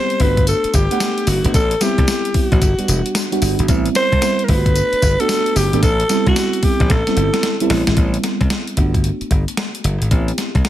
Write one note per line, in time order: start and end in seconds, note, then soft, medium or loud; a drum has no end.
0.00 0.22 G3 medium
0.00 0.21 B3 medium
0.00 0.22 C4 medium
0.00 0.22 E4 loud
0.00 0.21 G4 medium
0.00 0.23 C5 loud
0.10 closed hi-hat medium
0.20 0.52 G1 loud
0.20 0.74 A3 medium
0.20 0.74 B3 medium
0.20 0.74 D4 medium
0.20 0.74 F#4 medium
0.20 0.48 B4 loud
0.20 kick medium
0.20 open hi-hat medium
0.37 kick medium
0.37 closed hi-hat medium
0.47 0.76 A4 medium
0.47 closed hi-hat medium
0.47 tambourine medium
0.64 muted slap bass stroke soft
0.64 closed hi-hat soft
0.74 0.86 G1 medium
0.74 1.30 G4 loud
0.74 kick medium
0.74 closed hi-hat medium
0.74 tambourine medium
0.91 1.24 A3 medium
0.91 1.24 B3 medium
0.91 1.24 D4 medium
0.91 1.24 F#5 medium
0.91 closed hi-hat medium
1.00 snare loud
1.00 closed hi-hat medium
1.00 tambourine loud
1.18 closed hi-hat medium
1.27 1.40 F#1 loud
1.27 1.54 F#4 medium
1.27 open hi-hat medium
1.27 tambourine medium
1.45 1.52 G#1 medium
1.45 1.54 A3 medium
1.45 1.54 B3 medium
1.45 1.55 D4 medium
1.45 1.55 F#4 loud
1.45 closed hi-hat medium
1.54 1.74 A1 loud
1.54 1.84 A4 loud
1.54 kick loud
1.54 closed hi-hat medium
1.54 tambourine medium
1.71 closed hi-hat medium
1.81 2.18 G3 medium
1.81 2.19 B3 medium
1.81 2.19 C4 medium
1.81 2.19 E4 medium
1.81 2.37 G4 medium
1.81 snare medium
1.81 closed hi-hat loud
1.81 tambourine medium
1.98 2.05 C2 medium
1.98 kick medium
1.98 closed hi-hat medium
2.08 snare loud
2.08 closed hi-hat medium
2.08 tambourine medium
2.25 closed hi-hat medium
2.34 2.61 G3 medium
2.34 2.61 B3 medium
2.34 2.61 C4 medium
2.34 2.61 E4 medium
2.34 3.42 F#4 medium
2.34 muted slap bass stroke soft
2.34 kick medium
2.34 open hi-hat medium
2.52 2.59 A1 loud
2.52 kick medium
2.52 closed hi-hat soft
2.62 2.74 G1 loud
2.62 kick medium
2.62 closed hi-hat medium
2.62 tambourine medium
2.78 3.11 G3 medium
2.78 3.11 B3 medium
2.78 3.12 D4 medium
2.78 3.12 F#4 medium
2.78 muted slap bass stroke soft
2.78 closed hi-hat soft
2.88 3.01 E1 medium
2.88 closed hi-hat medium
2.88 tambourine medium
3.06 closed hi-hat medium
3.15 snare loud
3.15 closed hi-hat medium
3.15 tambourine loud
3.32 3.58 G3 medium
3.32 3.58 B3 medium
3.32 3.58 D4 medium
3.32 3.59 F#4 loud
3.32 closed hi-hat medium
3.42 3.54 G1 loud
3.42 open hi-hat medium
3.42 tambourine medium
3.59 3.66 G#1 medium
3.59 closed hi-hat medium
3.68 3.88 A1 loud
3.68 4.06 G3 medium
3.68 4.06 B3 medium
3.68 4.06 C4 medium
3.68 4.07 E4 medium
3.68 kick loud
3.68 closed hi-hat medium
3.68 tambourine medium
3.86 closed hi-hat medium
3.95 4.46 C5 loud
3.95 snare medium
3.95 closed hi-hat medium
3.95 tambourine medium
4.12 4.19 C2 medium
4.12 kick medium
4.12 closed hi-hat soft
4.22 4.49 G3 medium
4.22 4.48 B3 medium
4.22 4.49 C4 medium
4.22 4.49 E4 medium
4.22 snare loud
4.22 closed hi-hat medium
4.22 tambourine medium
4.39 closed hi-hat medium
4.44 4.52 A#4 medium
4.48 4.81 G1 loud
4.48 5.02 A3 medium
4.48 5.03 B3 medium
4.48 5.03 D4 medium
4.48 4.58 F4 medium
4.48 5.22 B4 loud
4.48 kick medium
4.48 open hi-hat medium
4.56 5.06 F#4 medium
4.66 kick medium
4.66 closed hi-hat medium
4.76 closed hi-hat medium
4.76 tambourine medium
4.93 muted slap bass stroke soft
4.93 closed hi-hat soft
5.02 5.15 G1 medium
5.02 kick medium
5.02 closed hi-hat medium
5.02 tambourine medium
5.20 5.52 A3 medium
5.20 5.53 B3 medium
5.20 5.53 D4 medium
5.20 5.53 F#4 medium
5.20 5.58 A4 loud
5.20 closed hi-hat medium
5.29 snare loud
5.29 closed hi-hat medium
5.29 tambourine loud
5.46 closed hi-hat medium
5.56 5.68 F#1 loud
5.56 5.83 G4 loud
5.56 open hi-hat medium
5.56 tambourine medium
5.73 5.80 G#1 medium
5.73 5.83 A3 medium
5.73 5.83 B3 medium
5.73 5.83 D4 medium
5.73 5.83 A4 loud
5.73 closed hi-hat medium
5.83 6.02 A1 loud
5.83 6.24 A4 loud
5.83 kick loud
5.83 closed hi-hat medium
5.83 tambourine medium
6.00 closed hi-hat medium
6.09 6.47 G3 medium
6.09 6.47 B3 medium
6.09 6.48 C4 medium
6.09 6.48 E4 medium
6.09 snare medium
6.09 closed hi-hat medium
6.09 tambourine medium
6.27 6.34 C2 medium
6.27 6.66 F#4 medium
6.27 kick medium
6.27 closed hi-hat soft
6.36 snare loud
6.36 closed hi-hat medium
6.36 tambourine medium
6.53 closed hi-hat soft
6.63 6.90 G3 medium
6.63 6.90 B3 medium
6.63 6.90 C4 medium
6.63 6.90 E4 medium
6.63 6.93 G4 medium
6.63 muted slap bass stroke soft
6.63 kick medium
6.63 open hi-hat medium
6.80 6.87 A1 medium
6.80 kick medium
6.80 closed hi-hat medium
6.90 7.02 A1 loud
6.90 7.71 A4 medium
6.90 kick medium
6.90 snare medium
6.90 closed hi-hat medium
7.07 7.40 G3 medium
7.07 7.40 B3 medium
7.07 7.40 C4 medium
7.07 7.40 E4 medium
7.07 muted slap bass stroke soft
7.07 snare medium
7.07 closed hi-hat soft
7.16 7.29 G1 medium
7.16 closed hi-hat medium
7.34 snare medium
7.34 closed hi-hat medium
7.43 snare medium
7.43 closed hi-hat medium
7.60 7.87 G3 loud
7.60 7.87 B3 medium
7.60 7.87 C4 medium
7.60 7.88 E4 loud
7.60 closed hi-hat medium
7.70 7.83 A1 loud
7.70 snare medium
7.70 open hi-hat medium
7.87 7.94 G#1 medium
7.87 snare loud
7.87 closed hi-hat medium
7.97 8.16 A1 loud
7.97 8.77 G3 medium
7.97 8.76 B3 medium
7.97 8.78 C4 medium
7.97 8.78 E4 medium
7.97 kick loud
7.97 closed hi-hat medium
8.14 closed hi-hat medium
8.24 snare medium
8.24 closed hi-hat medium
8.41 8.48 C2 medium
8.41 kick medium
8.41 closed hi-hat soft
8.50 snare loud
8.50 closed hi-hat medium
8.67 closed hi-hat medium
8.76 9.09 G1 medium
8.76 10.08 A3 medium
8.76 10.08 B3 medium
8.76 10.09 D4 medium
8.76 10.09 F#4 medium
8.76 kick medium
8.76 closed hi-hat medium
8.94 kick medium
8.94 closed hi-hat soft
9.04 closed hi-hat medium
9.21 muted slap bass stroke soft
9.21 closed hi-hat soft
9.31 9.43 G1 medium
9.31 kick medium
9.31 closed hi-hat medium
9.48 closed hi-hat medium
9.57 snare loud
9.57 closed hi-hat medium
9.75 closed hi-hat medium
9.84 9.97 F#1 loud
9.84 closed hi-hat medium
10.01 10.08 G#1 medium
10.01 closed hi-hat medium
10.11 10.31 A1 loud
10.11 10.69 B3 medium
10.11 10.69 C4 medium
10.11 10.69 E4 medium
10.11 10.69 G4 medium
10.11 kick loud
10.11 closed hi-hat medium
10.28 closed hi-hat medium
10.38 snare medium
10.38 closed hi-hat medium
10.55 10.62 C2 medium
10.55 kick medium
10.55 closed hi-hat soft
10.65 snare loud
10.65 closed hi-hat medium